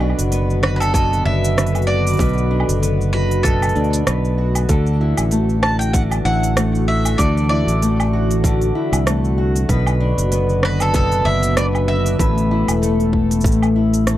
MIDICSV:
0, 0, Header, 1, 6, 480
1, 0, Start_track
1, 0, Key_signature, 2, "major"
1, 0, Tempo, 625000
1, 1683, Time_signature, 4, 2, 24, 8
1, 10888, End_track
2, 0, Start_track
2, 0, Title_t, "Mandolin"
2, 0, Program_c, 0, 25
2, 483, Note_on_c, 0, 71, 89
2, 576, Note_off_c, 0, 71, 0
2, 585, Note_on_c, 0, 71, 69
2, 615, Note_off_c, 0, 71, 0
2, 618, Note_on_c, 0, 69, 88
2, 716, Note_off_c, 0, 69, 0
2, 725, Note_on_c, 0, 69, 98
2, 947, Note_off_c, 0, 69, 0
2, 964, Note_on_c, 0, 76, 99
2, 1432, Note_off_c, 0, 76, 0
2, 1435, Note_on_c, 0, 74, 95
2, 2129, Note_off_c, 0, 74, 0
2, 2402, Note_on_c, 0, 71, 103
2, 2636, Note_on_c, 0, 69, 96
2, 2650, Note_off_c, 0, 71, 0
2, 3329, Note_off_c, 0, 69, 0
2, 4321, Note_on_c, 0, 81, 100
2, 4444, Note_off_c, 0, 81, 0
2, 4447, Note_on_c, 0, 79, 100
2, 4554, Note_off_c, 0, 79, 0
2, 4557, Note_on_c, 0, 78, 97
2, 4623, Note_off_c, 0, 78, 0
2, 4802, Note_on_c, 0, 78, 96
2, 5280, Note_off_c, 0, 78, 0
2, 5283, Note_on_c, 0, 76, 88
2, 5514, Note_on_c, 0, 74, 97
2, 5530, Note_off_c, 0, 76, 0
2, 5745, Note_off_c, 0, 74, 0
2, 5754, Note_on_c, 0, 74, 89
2, 7168, Note_off_c, 0, 74, 0
2, 8178, Note_on_c, 0, 71, 104
2, 8304, Note_off_c, 0, 71, 0
2, 8307, Note_on_c, 0, 69, 90
2, 8404, Note_off_c, 0, 69, 0
2, 8414, Note_on_c, 0, 69, 95
2, 8641, Note_on_c, 0, 76, 103
2, 8655, Note_off_c, 0, 69, 0
2, 8865, Note_off_c, 0, 76, 0
2, 8884, Note_on_c, 0, 74, 100
2, 8949, Note_off_c, 0, 74, 0
2, 9124, Note_on_c, 0, 76, 97
2, 10533, Note_off_c, 0, 76, 0
2, 10888, End_track
3, 0, Start_track
3, 0, Title_t, "Twelve-string acoustic guitar"
3, 0, Program_c, 1, 25
3, 0, Note_on_c, 1, 47, 85
3, 0, Note_on_c, 1, 50, 85
3, 0, Note_on_c, 1, 66, 65
3, 0, Note_on_c, 1, 71, 70
3, 3, Note_on_c, 1, 62, 66
3, 244, Note_on_c, 1, 59, 70
3, 479, Note_off_c, 1, 66, 0
3, 482, Note_on_c, 1, 66, 65
3, 718, Note_off_c, 1, 47, 0
3, 727, Note_on_c, 1, 47, 81
3, 960, Note_off_c, 1, 62, 0
3, 963, Note_on_c, 1, 62, 57
3, 1198, Note_off_c, 1, 59, 0
3, 1208, Note_on_c, 1, 59, 70
3, 1443, Note_off_c, 1, 66, 0
3, 1446, Note_on_c, 1, 66, 61
3, 1489, Note_off_c, 1, 50, 0
3, 1680, Note_off_c, 1, 47, 0
3, 1686, Note_off_c, 1, 71, 0
3, 1689, Note_on_c, 1, 47, 83
3, 1695, Note_on_c, 1, 71, 67
3, 1922, Note_off_c, 1, 62, 0
3, 1925, Note_on_c, 1, 62, 60
3, 2157, Note_off_c, 1, 59, 0
3, 2167, Note_on_c, 1, 59, 73
3, 2411, Note_off_c, 1, 66, 0
3, 2414, Note_on_c, 1, 66, 62
3, 2638, Note_off_c, 1, 47, 0
3, 2647, Note_on_c, 1, 47, 78
3, 2884, Note_off_c, 1, 62, 0
3, 2887, Note_on_c, 1, 62, 65
3, 3115, Note_off_c, 1, 59, 0
3, 3124, Note_on_c, 1, 59, 67
3, 3361, Note_off_c, 1, 66, 0
3, 3364, Note_on_c, 1, 66, 58
3, 3604, Note_on_c, 1, 50, 81
3, 3606, Note_off_c, 1, 71, 0
3, 3609, Note_on_c, 1, 69, 72
3, 3657, Note_off_c, 1, 59, 0
3, 3659, Note_off_c, 1, 47, 0
3, 3842, Note_off_c, 1, 62, 0
3, 3845, Note_on_c, 1, 64, 64
3, 3868, Note_off_c, 1, 66, 0
3, 4081, Note_on_c, 1, 57, 73
3, 4320, Note_on_c, 1, 66, 63
3, 4554, Note_off_c, 1, 50, 0
3, 4557, Note_on_c, 1, 50, 89
3, 4795, Note_off_c, 1, 64, 0
3, 4804, Note_on_c, 1, 64, 65
3, 5033, Note_off_c, 1, 57, 0
3, 5042, Note_on_c, 1, 57, 76
3, 5282, Note_off_c, 1, 66, 0
3, 5285, Note_on_c, 1, 66, 63
3, 5519, Note_off_c, 1, 50, 0
3, 5519, Note_off_c, 1, 69, 0
3, 5522, Note_on_c, 1, 50, 88
3, 5528, Note_on_c, 1, 69, 68
3, 5753, Note_off_c, 1, 64, 0
3, 5763, Note_on_c, 1, 64, 65
3, 5997, Note_off_c, 1, 57, 0
3, 6006, Note_on_c, 1, 57, 77
3, 6243, Note_off_c, 1, 66, 0
3, 6246, Note_on_c, 1, 66, 66
3, 6481, Note_off_c, 1, 50, 0
3, 6484, Note_on_c, 1, 50, 92
3, 6713, Note_off_c, 1, 64, 0
3, 6722, Note_on_c, 1, 64, 63
3, 6951, Note_off_c, 1, 57, 0
3, 6960, Note_on_c, 1, 57, 68
3, 7200, Note_off_c, 1, 66, 0
3, 7203, Note_on_c, 1, 66, 64
3, 7444, Note_off_c, 1, 69, 0
3, 7444, Note_on_c, 1, 47, 86
3, 7447, Note_on_c, 1, 71, 73
3, 7495, Note_off_c, 1, 57, 0
3, 7496, Note_off_c, 1, 64, 0
3, 7683, Note_on_c, 1, 62, 66
3, 7926, Note_on_c, 1, 59, 73
3, 8161, Note_off_c, 1, 66, 0
3, 8165, Note_on_c, 1, 66, 65
3, 8394, Note_off_c, 1, 47, 0
3, 8403, Note_on_c, 1, 47, 89
3, 8633, Note_off_c, 1, 62, 0
3, 8642, Note_on_c, 1, 62, 61
3, 8881, Note_off_c, 1, 59, 0
3, 8884, Note_on_c, 1, 59, 70
3, 9114, Note_off_c, 1, 66, 0
3, 9123, Note_on_c, 1, 66, 61
3, 9172, Note_off_c, 1, 50, 0
3, 9361, Note_off_c, 1, 47, 0
3, 9364, Note_on_c, 1, 45, 83
3, 9366, Note_off_c, 1, 71, 0
3, 9369, Note_on_c, 1, 71, 71
3, 9417, Note_off_c, 1, 62, 0
3, 9417, Note_off_c, 1, 66, 0
3, 9608, Note_on_c, 1, 64, 71
3, 9842, Note_off_c, 1, 59, 0
3, 9845, Note_on_c, 1, 57, 74
3, 10082, Note_on_c, 1, 69, 61
3, 10318, Note_off_c, 1, 45, 0
3, 10328, Note_on_c, 1, 45, 84
3, 10562, Note_off_c, 1, 64, 0
3, 10565, Note_on_c, 1, 64, 65
3, 10803, Note_off_c, 1, 57, 0
3, 10807, Note_on_c, 1, 57, 74
3, 10888, Note_off_c, 1, 45, 0
3, 10888, Note_off_c, 1, 57, 0
3, 10888, Note_off_c, 1, 64, 0
3, 10888, Note_off_c, 1, 69, 0
3, 10888, Note_off_c, 1, 71, 0
3, 10888, End_track
4, 0, Start_track
4, 0, Title_t, "Ambient pad"
4, 0, Program_c, 2, 92
4, 0, Note_on_c, 2, 50, 78
4, 0, Note_on_c, 2, 59, 70
4, 0, Note_on_c, 2, 66, 88
4, 1664, Note_off_c, 2, 59, 0
4, 1685, Note_on_c, 2, 57, 71
4, 3572, Note_off_c, 2, 50, 0
4, 3572, Note_off_c, 2, 66, 0
4, 3585, Note_off_c, 2, 57, 0
4, 3612, Note_on_c, 2, 52, 73
4, 3613, Note_on_c, 2, 62, 71
4, 3614, Note_on_c, 2, 66, 83
4, 7417, Note_off_c, 2, 52, 0
4, 7417, Note_off_c, 2, 62, 0
4, 7450, Note_on_c, 2, 59, 76
4, 7453, Note_on_c, 2, 50, 77
4, 9338, Note_off_c, 2, 66, 0
4, 9347, Note_off_c, 2, 59, 0
4, 9349, Note_off_c, 2, 50, 0
4, 9366, Note_on_c, 2, 52, 76
4, 9366, Note_on_c, 2, 59, 69
4, 9366, Note_on_c, 2, 69, 90
4, 10888, Note_off_c, 2, 52, 0
4, 10888, Note_off_c, 2, 59, 0
4, 10888, Note_off_c, 2, 69, 0
4, 10888, End_track
5, 0, Start_track
5, 0, Title_t, "Fingered electric bass"
5, 0, Program_c, 3, 33
5, 0, Note_on_c, 3, 35, 100
5, 96, Note_off_c, 3, 35, 0
5, 142, Note_on_c, 3, 30, 80
5, 933, Note_off_c, 3, 30, 0
5, 963, Note_on_c, 3, 30, 89
5, 1651, Note_off_c, 3, 30, 0
5, 1685, Note_on_c, 3, 35, 97
5, 2017, Note_off_c, 3, 35, 0
5, 2062, Note_on_c, 3, 30, 83
5, 2853, Note_off_c, 3, 30, 0
5, 2885, Note_on_c, 3, 38, 81
5, 3083, Note_off_c, 3, 38, 0
5, 3126, Note_on_c, 3, 35, 88
5, 3572, Note_off_c, 3, 35, 0
5, 3603, Note_on_c, 3, 38, 98
5, 3936, Note_off_c, 3, 38, 0
5, 3980, Note_on_c, 3, 33, 80
5, 4772, Note_off_c, 3, 33, 0
5, 4799, Note_on_c, 3, 33, 83
5, 5489, Note_off_c, 3, 33, 0
5, 5522, Note_on_c, 3, 38, 103
5, 5856, Note_off_c, 3, 38, 0
5, 5891, Note_on_c, 3, 33, 85
5, 6687, Note_off_c, 3, 33, 0
5, 6853, Note_on_c, 3, 36, 92
5, 7409, Note_off_c, 3, 36, 0
5, 7442, Note_on_c, 3, 35, 99
5, 7776, Note_off_c, 3, 35, 0
5, 7816, Note_on_c, 3, 30, 90
5, 8610, Note_off_c, 3, 30, 0
5, 8641, Note_on_c, 3, 30, 91
5, 9330, Note_off_c, 3, 30, 0
5, 9365, Note_on_c, 3, 33, 104
5, 9697, Note_off_c, 3, 33, 0
5, 9740, Note_on_c, 3, 28, 82
5, 10318, Note_off_c, 3, 28, 0
5, 10323, Note_on_c, 3, 33, 104
5, 10888, Note_off_c, 3, 33, 0
5, 10888, End_track
6, 0, Start_track
6, 0, Title_t, "Drums"
6, 2, Note_on_c, 9, 77, 46
6, 74, Note_off_c, 9, 77, 0
6, 74, Note_on_c, 9, 77, 37
6, 143, Note_on_c, 9, 46, 48
6, 146, Note_on_c, 9, 82, 72
6, 151, Note_off_c, 9, 77, 0
6, 220, Note_off_c, 9, 46, 0
6, 223, Note_off_c, 9, 82, 0
6, 244, Note_on_c, 9, 46, 51
6, 247, Note_on_c, 9, 82, 60
6, 321, Note_off_c, 9, 46, 0
6, 324, Note_off_c, 9, 82, 0
6, 386, Note_on_c, 9, 82, 33
6, 463, Note_off_c, 9, 82, 0
6, 487, Note_on_c, 9, 37, 82
6, 564, Note_off_c, 9, 37, 0
6, 625, Note_on_c, 9, 46, 45
6, 625, Note_on_c, 9, 77, 71
6, 628, Note_on_c, 9, 82, 62
6, 702, Note_off_c, 9, 46, 0
6, 702, Note_off_c, 9, 77, 0
6, 705, Note_off_c, 9, 82, 0
6, 721, Note_on_c, 9, 36, 117
6, 729, Note_on_c, 9, 46, 53
6, 732, Note_on_c, 9, 82, 59
6, 798, Note_off_c, 9, 36, 0
6, 806, Note_off_c, 9, 46, 0
6, 809, Note_off_c, 9, 82, 0
6, 869, Note_on_c, 9, 46, 29
6, 872, Note_on_c, 9, 82, 34
6, 946, Note_off_c, 9, 46, 0
6, 949, Note_off_c, 9, 82, 0
6, 1109, Note_on_c, 9, 82, 71
6, 1185, Note_off_c, 9, 82, 0
6, 1212, Note_on_c, 9, 37, 78
6, 1212, Note_on_c, 9, 46, 50
6, 1215, Note_on_c, 9, 82, 57
6, 1279, Note_off_c, 9, 46, 0
6, 1279, Note_on_c, 9, 46, 42
6, 1289, Note_off_c, 9, 37, 0
6, 1292, Note_off_c, 9, 82, 0
6, 1344, Note_off_c, 9, 46, 0
6, 1344, Note_on_c, 9, 46, 35
6, 1344, Note_on_c, 9, 77, 72
6, 1346, Note_on_c, 9, 82, 37
6, 1397, Note_off_c, 9, 46, 0
6, 1397, Note_on_c, 9, 46, 29
6, 1420, Note_off_c, 9, 77, 0
6, 1423, Note_off_c, 9, 82, 0
6, 1474, Note_off_c, 9, 46, 0
6, 1587, Note_on_c, 9, 46, 38
6, 1590, Note_on_c, 9, 82, 63
6, 1609, Note_off_c, 9, 46, 0
6, 1609, Note_on_c, 9, 46, 30
6, 1638, Note_off_c, 9, 46, 0
6, 1638, Note_on_c, 9, 46, 26
6, 1665, Note_off_c, 9, 46, 0
6, 1665, Note_on_c, 9, 46, 22
6, 1666, Note_off_c, 9, 82, 0
6, 1683, Note_on_c, 9, 36, 127
6, 1691, Note_off_c, 9, 46, 0
6, 1691, Note_on_c, 9, 46, 49
6, 1693, Note_on_c, 9, 82, 58
6, 1760, Note_off_c, 9, 36, 0
6, 1767, Note_off_c, 9, 46, 0
6, 1770, Note_off_c, 9, 82, 0
6, 1792, Note_on_c, 9, 46, 10
6, 1826, Note_on_c, 9, 82, 35
6, 1868, Note_off_c, 9, 46, 0
6, 1903, Note_off_c, 9, 82, 0
6, 1996, Note_on_c, 9, 77, 72
6, 2066, Note_on_c, 9, 46, 47
6, 2069, Note_on_c, 9, 82, 69
6, 2073, Note_off_c, 9, 77, 0
6, 2143, Note_off_c, 9, 46, 0
6, 2146, Note_off_c, 9, 82, 0
6, 2173, Note_on_c, 9, 46, 53
6, 2175, Note_on_c, 9, 82, 58
6, 2249, Note_off_c, 9, 46, 0
6, 2252, Note_off_c, 9, 82, 0
6, 2312, Note_on_c, 9, 82, 35
6, 2389, Note_off_c, 9, 82, 0
6, 2544, Note_on_c, 9, 46, 41
6, 2621, Note_off_c, 9, 46, 0
6, 2643, Note_on_c, 9, 36, 127
6, 2650, Note_on_c, 9, 46, 56
6, 2652, Note_on_c, 9, 82, 57
6, 2720, Note_off_c, 9, 36, 0
6, 2726, Note_off_c, 9, 46, 0
6, 2729, Note_off_c, 9, 82, 0
6, 2783, Note_on_c, 9, 46, 27
6, 2783, Note_on_c, 9, 77, 74
6, 2786, Note_on_c, 9, 82, 35
6, 2834, Note_off_c, 9, 46, 0
6, 2834, Note_on_c, 9, 46, 23
6, 2860, Note_off_c, 9, 77, 0
6, 2863, Note_off_c, 9, 82, 0
6, 2884, Note_off_c, 9, 46, 0
6, 2884, Note_on_c, 9, 46, 20
6, 2950, Note_off_c, 9, 46, 0
6, 2950, Note_on_c, 9, 46, 16
6, 3020, Note_off_c, 9, 46, 0
6, 3020, Note_on_c, 9, 46, 42
6, 3022, Note_on_c, 9, 82, 68
6, 3096, Note_off_c, 9, 46, 0
6, 3099, Note_off_c, 9, 82, 0
6, 3125, Note_on_c, 9, 37, 77
6, 3125, Note_on_c, 9, 46, 54
6, 3127, Note_on_c, 9, 82, 55
6, 3201, Note_off_c, 9, 37, 0
6, 3201, Note_off_c, 9, 46, 0
6, 3204, Note_off_c, 9, 82, 0
6, 3262, Note_on_c, 9, 82, 34
6, 3339, Note_off_c, 9, 82, 0
6, 3496, Note_on_c, 9, 46, 41
6, 3496, Note_on_c, 9, 77, 68
6, 3499, Note_on_c, 9, 82, 65
6, 3573, Note_off_c, 9, 46, 0
6, 3573, Note_off_c, 9, 77, 0
6, 3576, Note_off_c, 9, 82, 0
6, 3600, Note_on_c, 9, 46, 47
6, 3603, Note_on_c, 9, 82, 54
6, 3604, Note_on_c, 9, 36, 118
6, 3677, Note_off_c, 9, 46, 0
6, 3680, Note_off_c, 9, 36, 0
6, 3680, Note_off_c, 9, 82, 0
6, 3736, Note_on_c, 9, 82, 34
6, 3813, Note_off_c, 9, 82, 0
6, 3974, Note_on_c, 9, 46, 44
6, 3974, Note_on_c, 9, 77, 80
6, 3977, Note_on_c, 9, 82, 70
6, 4051, Note_off_c, 9, 46, 0
6, 4051, Note_off_c, 9, 77, 0
6, 4054, Note_off_c, 9, 82, 0
6, 4079, Note_on_c, 9, 46, 52
6, 4082, Note_on_c, 9, 82, 55
6, 4156, Note_off_c, 9, 46, 0
6, 4159, Note_off_c, 9, 82, 0
6, 4219, Note_on_c, 9, 82, 33
6, 4296, Note_off_c, 9, 82, 0
6, 4322, Note_on_c, 9, 37, 66
6, 4399, Note_off_c, 9, 37, 0
6, 4460, Note_on_c, 9, 46, 40
6, 4463, Note_on_c, 9, 82, 66
6, 4537, Note_off_c, 9, 46, 0
6, 4539, Note_off_c, 9, 82, 0
6, 4561, Note_on_c, 9, 36, 118
6, 4563, Note_on_c, 9, 46, 56
6, 4566, Note_on_c, 9, 82, 57
6, 4638, Note_off_c, 9, 36, 0
6, 4640, Note_off_c, 9, 46, 0
6, 4643, Note_off_c, 9, 82, 0
6, 4696, Note_on_c, 9, 46, 29
6, 4696, Note_on_c, 9, 77, 77
6, 4698, Note_on_c, 9, 82, 35
6, 4772, Note_off_c, 9, 46, 0
6, 4772, Note_off_c, 9, 77, 0
6, 4775, Note_off_c, 9, 82, 0
6, 4941, Note_on_c, 9, 46, 44
6, 4943, Note_on_c, 9, 82, 67
6, 5017, Note_off_c, 9, 46, 0
6, 5020, Note_off_c, 9, 82, 0
6, 5044, Note_on_c, 9, 37, 77
6, 5044, Note_on_c, 9, 46, 49
6, 5046, Note_on_c, 9, 82, 55
6, 5120, Note_off_c, 9, 37, 0
6, 5120, Note_off_c, 9, 46, 0
6, 5123, Note_off_c, 9, 82, 0
6, 5184, Note_on_c, 9, 82, 35
6, 5261, Note_off_c, 9, 82, 0
6, 5416, Note_on_c, 9, 46, 39
6, 5416, Note_on_c, 9, 77, 72
6, 5419, Note_on_c, 9, 82, 66
6, 5493, Note_off_c, 9, 46, 0
6, 5493, Note_off_c, 9, 77, 0
6, 5496, Note_off_c, 9, 82, 0
6, 5520, Note_on_c, 9, 36, 119
6, 5524, Note_on_c, 9, 46, 51
6, 5527, Note_on_c, 9, 82, 51
6, 5597, Note_off_c, 9, 36, 0
6, 5601, Note_off_c, 9, 46, 0
6, 5603, Note_off_c, 9, 82, 0
6, 5663, Note_on_c, 9, 82, 32
6, 5740, Note_off_c, 9, 82, 0
6, 5900, Note_on_c, 9, 46, 46
6, 5903, Note_on_c, 9, 82, 67
6, 5977, Note_off_c, 9, 46, 0
6, 5980, Note_off_c, 9, 82, 0
6, 6009, Note_on_c, 9, 46, 54
6, 6012, Note_on_c, 9, 82, 54
6, 6086, Note_off_c, 9, 46, 0
6, 6089, Note_off_c, 9, 82, 0
6, 6142, Note_on_c, 9, 77, 80
6, 6145, Note_on_c, 9, 82, 33
6, 6219, Note_off_c, 9, 77, 0
6, 6222, Note_off_c, 9, 82, 0
6, 6379, Note_on_c, 9, 46, 44
6, 6382, Note_on_c, 9, 82, 63
6, 6456, Note_off_c, 9, 46, 0
6, 6459, Note_off_c, 9, 82, 0
6, 6481, Note_on_c, 9, 36, 113
6, 6487, Note_on_c, 9, 46, 54
6, 6489, Note_on_c, 9, 82, 54
6, 6558, Note_off_c, 9, 36, 0
6, 6563, Note_off_c, 9, 46, 0
6, 6566, Note_off_c, 9, 82, 0
6, 6616, Note_on_c, 9, 46, 31
6, 6619, Note_on_c, 9, 82, 32
6, 6693, Note_off_c, 9, 46, 0
6, 6696, Note_off_c, 9, 82, 0
6, 6857, Note_on_c, 9, 46, 44
6, 6857, Note_on_c, 9, 77, 80
6, 6860, Note_on_c, 9, 82, 66
6, 6934, Note_off_c, 9, 46, 0
6, 6934, Note_off_c, 9, 77, 0
6, 6937, Note_off_c, 9, 82, 0
6, 6964, Note_on_c, 9, 37, 77
6, 6964, Note_on_c, 9, 46, 54
6, 6967, Note_on_c, 9, 82, 58
6, 7041, Note_off_c, 9, 37, 0
6, 7041, Note_off_c, 9, 46, 0
6, 7044, Note_off_c, 9, 82, 0
6, 7101, Note_on_c, 9, 82, 32
6, 7178, Note_off_c, 9, 82, 0
6, 7339, Note_on_c, 9, 46, 43
6, 7342, Note_on_c, 9, 82, 59
6, 7416, Note_off_c, 9, 46, 0
6, 7419, Note_off_c, 9, 82, 0
6, 7442, Note_on_c, 9, 36, 110
6, 7445, Note_on_c, 9, 46, 56
6, 7448, Note_on_c, 9, 82, 53
6, 7519, Note_off_c, 9, 36, 0
6, 7522, Note_off_c, 9, 46, 0
6, 7525, Note_off_c, 9, 82, 0
6, 7577, Note_on_c, 9, 77, 86
6, 7579, Note_on_c, 9, 82, 33
6, 7654, Note_off_c, 9, 77, 0
6, 7656, Note_off_c, 9, 82, 0
6, 7819, Note_on_c, 9, 46, 47
6, 7822, Note_on_c, 9, 82, 65
6, 7896, Note_off_c, 9, 46, 0
6, 7899, Note_off_c, 9, 82, 0
6, 7924, Note_on_c, 9, 46, 56
6, 7927, Note_on_c, 9, 82, 56
6, 8001, Note_off_c, 9, 46, 0
6, 8003, Note_off_c, 9, 82, 0
6, 8058, Note_on_c, 9, 82, 30
6, 8135, Note_off_c, 9, 82, 0
6, 8164, Note_on_c, 9, 37, 70
6, 8240, Note_off_c, 9, 37, 0
6, 8295, Note_on_c, 9, 46, 41
6, 8295, Note_on_c, 9, 77, 79
6, 8298, Note_on_c, 9, 82, 62
6, 8372, Note_off_c, 9, 46, 0
6, 8372, Note_off_c, 9, 77, 0
6, 8375, Note_off_c, 9, 82, 0
6, 8400, Note_on_c, 9, 46, 56
6, 8403, Note_on_c, 9, 82, 52
6, 8404, Note_on_c, 9, 36, 115
6, 8477, Note_off_c, 9, 46, 0
6, 8480, Note_off_c, 9, 82, 0
6, 8481, Note_off_c, 9, 36, 0
6, 8538, Note_on_c, 9, 46, 33
6, 8540, Note_on_c, 9, 82, 35
6, 8614, Note_off_c, 9, 46, 0
6, 8617, Note_off_c, 9, 82, 0
6, 8777, Note_on_c, 9, 46, 49
6, 8779, Note_on_c, 9, 82, 64
6, 8853, Note_off_c, 9, 46, 0
6, 8856, Note_off_c, 9, 82, 0
6, 8885, Note_on_c, 9, 37, 77
6, 8885, Note_on_c, 9, 46, 56
6, 8888, Note_on_c, 9, 82, 54
6, 8962, Note_off_c, 9, 37, 0
6, 8962, Note_off_c, 9, 46, 0
6, 8964, Note_off_c, 9, 82, 0
6, 9023, Note_on_c, 9, 77, 81
6, 9025, Note_on_c, 9, 82, 32
6, 9099, Note_off_c, 9, 77, 0
6, 9102, Note_off_c, 9, 82, 0
6, 9260, Note_on_c, 9, 46, 43
6, 9263, Note_on_c, 9, 82, 61
6, 9337, Note_off_c, 9, 46, 0
6, 9340, Note_off_c, 9, 82, 0
6, 9365, Note_on_c, 9, 36, 118
6, 9369, Note_on_c, 9, 46, 59
6, 9372, Note_on_c, 9, 82, 53
6, 9442, Note_off_c, 9, 36, 0
6, 9446, Note_off_c, 9, 46, 0
6, 9449, Note_off_c, 9, 82, 0
6, 9505, Note_on_c, 9, 46, 33
6, 9508, Note_on_c, 9, 82, 34
6, 9582, Note_off_c, 9, 46, 0
6, 9585, Note_off_c, 9, 82, 0
6, 9741, Note_on_c, 9, 46, 48
6, 9741, Note_on_c, 9, 77, 83
6, 9744, Note_on_c, 9, 82, 70
6, 9818, Note_off_c, 9, 46, 0
6, 9818, Note_off_c, 9, 77, 0
6, 9821, Note_off_c, 9, 82, 0
6, 9852, Note_on_c, 9, 46, 61
6, 9855, Note_on_c, 9, 82, 54
6, 9929, Note_off_c, 9, 46, 0
6, 9932, Note_off_c, 9, 82, 0
6, 9984, Note_on_c, 9, 46, 33
6, 10061, Note_off_c, 9, 46, 0
6, 10084, Note_on_c, 9, 36, 66
6, 10161, Note_off_c, 9, 36, 0
6, 10223, Note_on_c, 9, 46, 49
6, 10226, Note_on_c, 9, 82, 61
6, 10297, Note_off_c, 9, 82, 0
6, 10297, Note_on_c, 9, 82, 46
6, 10300, Note_off_c, 9, 46, 0
6, 10325, Note_on_c, 9, 36, 123
6, 10333, Note_on_c, 9, 46, 61
6, 10335, Note_off_c, 9, 82, 0
6, 10335, Note_on_c, 9, 82, 55
6, 10380, Note_off_c, 9, 82, 0
6, 10380, Note_on_c, 9, 82, 42
6, 10402, Note_off_c, 9, 36, 0
6, 10410, Note_off_c, 9, 46, 0
6, 10457, Note_off_c, 9, 82, 0
6, 10464, Note_on_c, 9, 77, 77
6, 10467, Note_on_c, 9, 82, 32
6, 10541, Note_off_c, 9, 77, 0
6, 10544, Note_off_c, 9, 82, 0
6, 10702, Note_on_c, 9, 46, 44
6, 10705, Note_on_c, 9, 82, 63
6, 10779, Note_off_c, 9, 46, 0
6, 10782, Note_off_c, 9, 82, 0
6, 10806, Note_on_c, 9, 37, 61
6, 10806, Note_on_c, 9, 46, 58
6, 10808, Note_on_c, 9, 82, 54
6, 10882, Note_off_c, 9, 37, 0
6, 10882, Note_off_c, 9, 46, 0
6, 10885, Note_off_c, 9, 82, 0
6, 10888, End_track
0, 0, End_of_file